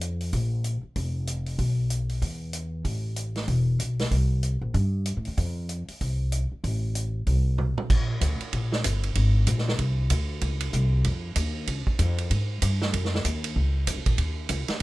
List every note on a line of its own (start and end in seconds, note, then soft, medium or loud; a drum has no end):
0.00 0.30 F2 medium
0.00 closed hi-hat soft
0.21 open hi-hat soft
0.33 0.80 A#1 medium
0.33 kick soft
0.33 open hi-hat soft
0.64 closed hi-hat soft
0.83 muted upright bass stroke soft
0.96 1.56 F1 medium
0.96 kick soft
0.96 open hi-hat soft
1.27 closed hi-hat medium
1.46 open hi-hat soft
1.58 2.19 B1 medium
1.58 kick soft
1.58 open hi-hat soft
1.90 closed hi-hat soft
2.09 open hi-hat soft
2.22 2.82 E2 medium
2.22 kick soft
2.22 open hi-hat soft
2.53 closed hi-hat medium
2.85 3.45 A1 medium
2.85 kick soft
2.85 open hi-hat soft
3.16 closed hi-hat soft
3.35 snare soft
3.35 open hi-hat soft
3.48 3.77 E1 medium
3.48 kick soft
3.48 open hi-hat soft
3.79 4.08 B1 medium
3.79 closed hi-hat medium
3.99 snare soft
3.99 open hi-hat soft
4.11 4.58 C2 medium
4.11 kick soft
4.11 open hi-hat soft
4.43 closed hi-hat soft
4.61 4.73 A#1 medium
4.74 5.13 G2 medium
4.74 kick soft
4.74 open hi-hat soft
5.06 closed hi-hat medium
5.17 5.26 A2 medium
5.25 5.37 E2 medium
5.25 open hi-hat soft
5.37 5.85 F2 medium
5.37 kick soft
5.37 open hi-hat soft
5.69 closed hi-hat soft
5.88 muted upright bass stroke soft
5.88 open hi-hat soft
6.01 6.48 C2 medium
6.01 kick soft
6.01 open hi-hat soft
6.32 closed hi-hat medium
6.52 muted upright bass stroke soft
6.64 7.24 A1 medium
6.64 kick soft
6.64 open hi-hat soft
6.95 closed hi-hat soft
7.27 7.74 C2 medium
7.27 kick soft
7.27 open hi-hat soft
7.58 mid tom soft
7.78 muted upright bass stroke soft
7.78 mid tom medium
7.90 8.21 A#1 medium
7.90 kick medium
7.90 crash medium
8.21 8.39 D2 medium
8.21 kick soft
8.21 hi-hat pedal soft
8.21 ride medium
8.40 muted upright bass stroke soft
8.40 ride soft
8.53 8.84 A#1 medium
8.53 kick soft
8.53 ride medium
8.72 snare soft
8.84 9.15 G1 medium
8.84 kick soft
8.84 hi-hat pedal medium
8.84 ride medium
9.03 ride soft
9.15 9.46 G#1 medium
9.15 kick soft
9.15 ride medium
9.47 9.78 A#1 medium
9.47 kick soft
9.47 hi-hat pedal medium
9.47 ride medium
9.58 snare soft
9.68 snare soft
9.79 10.09 C2 medium
9.79 kick soft
9.79 ride soft
10.10 10.41 D2 medium
10.10 kick soft
10.10 hi-hat pedal soft
10.10 ride medium
10.41 10.72 C#2 medium
10.41 kick soft
10.41 ride medium
10.60 ride medium
10.73 11.04 C2 medium
10.73 kick soft
10.73 hi-hat pedal medium
11.04 11.35 F2 medium
11.04 kick soft
11.04 ride medium
11.36 11.67 D#2 medium
11.36 kick soft
11.36 hi-hat pedal medium
11.36 ride medium
11.67 11.86 C#2 medium
11.67 kick soft
11.67 ride medium
11.87 muted upright bass stroke soft
11.87 kick soft
11.99 12.30 F2 medium
11.99 kick soft
11.99 hi-hat pedal soft
11.99 ride medium
12.18 ride soft
12.31 12.61 G#2 medium
12.31 kick soft
12.31 ride medium
12.62 12.92 G2 medium
12.62 kick soft
12.62 hi-hat pedal medium
12.62 ride medium
12.82 snare soft
12.93 13.24 F#2 medium
12.93 kick soft
12.93 ride medium
13.05 snare soft
13.15 snare soft
13.25 13.55 D#2 medium
13.25 kick soft
13.25 hi-hat pedal medium
13.25 ride medium
13.44 ride medium
13.56 13.86 C#2 medium
13.56 kick soft
13.87 13.98 F2 medium
13.87 kick soft
13.87 hi-hat pedal medium
13.87 ride medium
13.96 14.07 C#2 medium
14.06 14.17 A#1 medium
14.06 kick medium
14.06 ride soft
14.18 14.49 D#2 medium
14.18 kick soft
14.18 ride medium
14.49 14.67 C#2 medium
14.49 kick soft
14.49 hi-hat pedal medium
14.49 ride medium
14.68 muted upright bass stroke soft
14.68 snare soft
14.68 ride soft